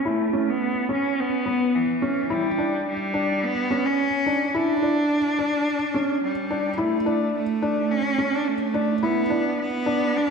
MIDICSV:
0, 0, Header, 1, 3, 480
1, 0, Start_track
1, 0, Tempo, 560748
1, 50, Time_signature, 4, 2, 24, 8
1, 8819, End_track
2, 0, Start_track
2, 0, Title_t, "Felt piano"
2, 0, Program_c, 0, 0
2, 45, Note_on_c, 0, 64, 78
2, 197, Note_off_c, 0, 64, 0
2, 284, Note_on_c, 0, 61, 62
2, 587, Note_off_c, 0, 61, 0
2, 762, Note_on_c, 0, 61, 65
2, 1065, Note_off_c, 0, 61, 0
2, 1247, Note_on_c, 0, 59, 68
2, 1549, Note_off_c, 0, 59, 0
2, 1730, Note_on_c, 0, 61, 68
2, 1881, Note_off_c, 0, 61, 0
2, 1969, Note_on_c, 0, 64, 80
2, 2120, Note_off_c, 0, 64, 0
2, 2212, Note_on_c, 0, 62, 68
2, 2512, Note_off_c, 0, 62, 0
2, 2686, Note_on_c, 0, 62, 73
2, 2988, Note_off_c, 0, 62, 0
2, 3172, Note_on_c, 0, 61, 67
2, 3472, Note_off_c, 0, 61, 0
2, 3650, Note_on_c, 0, 62, 68
2, 3800, Note_off_c, 0, 62, 0
2, 3890, Note_on_c, 0, 64, 81
2, 4040, Note_off_c, 0, 64, 0
2, 4129, Note_on_c, 0, 62, 67
2, 4430, Note_off_c, 0, 62, 0
2, 4611, Note_on_c, 0, 62, 69
2, 4911, Note_off_c, 0, 62, 0
2, 5088, Note_on_c, 0, 61, 71
2, 5390, Note_off_c, 0, 61, 0
2, 5568, Note_on_c, 0, 62, 67
2, 5719, Note_off_c, 0, 62, 0
2, 5800, Note_on_c, 0, 64, 81
2, 5954, Note_off_c, 0, 64, 0
2, 6044, Note_on_c, 0, 62, 71
2, 6347, Note_off_c, 0, 62, 0
2, 6526, Note_on_c, 0, 62, 72
2, 6828, Note_off_c, 0, 62, 0
2, 7005, Note_on_c, 0, 61, 69
2, 7307, Note_off_c, 0, 61, 0
2, 7483, Note_on_c, 0, 62, 71
2, 7636, Note_off_c, 0, 62, 0
2, 7727, Note_on_c, 0, 64, 85
2, 7878, Note_off_c, 0, 64, 0
2, 7961, Note_on_c, 0, 62, 71
2, 8265, Note_off_c, 0, 62, 0
2, 8442, Note_on_c, 0, 62, 74
2, 8745, Note_off_c, 0, 62, 0
2, 8819, End_track
3, 0, Start_track
3, 0, Title_t, "Cello"
3, 0, Program_c, 1, 42
3, 67, Note_on_c, 1, 57, 73
3, 425, Note_on_c, 1, 59, 87
3, 438, Note_off_c, 1, 57, 0
3, 778, Note_off_c, 1, 59, 0
3, 792, Note_on_c, 1, 61, 83
3, 1026, Note_on_c, 1, 59, 93
3, 1039, Note_off_c, 1, 61, 0
3, 1499, Note_on_c, 1, 52, 74
3, 1512, Note_off_c, 1, 59, 0
3, 1991, Note_on_c, 1, 55, 72
3, 2003, Note_off_c, 1, 52, 0
3, 2460, Note_off_c, 1, 55, 0
3, 2469, Note_on_c, 1, 55, 83
3, 2942, Note_on_c, 1, 59, 93
3, 2955, Note_off_c, 1, 55, 0
3, 3301, Note_on_c, 1, 61, 98
3, 3314, Note_off_c, 1, 59, 0
3, 3901, Note_on_c, 1, 62, 94
3, 3913, Note_off_c, 1, 61, 0
3, 5326, Note_off_c, 1, 62, 0
3, 5331, Note_on_c, 1, 55, 70
3, 5817, Note_on_c, 1, 57, 72
3, 5829, Note_off_c, 1, 55, 0
3, 6293, Note_off_c, 1, 57, 0
3, 6298, Note_on_c, 1, 57, 77
3, 6771, Note_on_c, 1, 61, 88
3, 6784, Note_off_c, 1, 57, 0
3, 7139, Note_on_c, 1, 62, 77
3, 7151, Note_off_c, 1, 61, 0
3, 7254, Note_on_c, 1, 57, 78
3, 7267, Note_off_c, 1, 62, 0
3, 7737, Note_on_c, 1, 59, 75
3, 7750, Note_off_c, 1, 57, 0
3, 8213, Note_off_c, 1, 59, 0
3, 8219, Note_on_c, 1, 59, 90
3, 8704, Note_on_c, 1, 62, 96
3, 8716, Note_off_c, 1, 59, 0
3, 8819, Note_off_c, 1, 62, 0
3, 8819, End_track
0, 0, End_of_file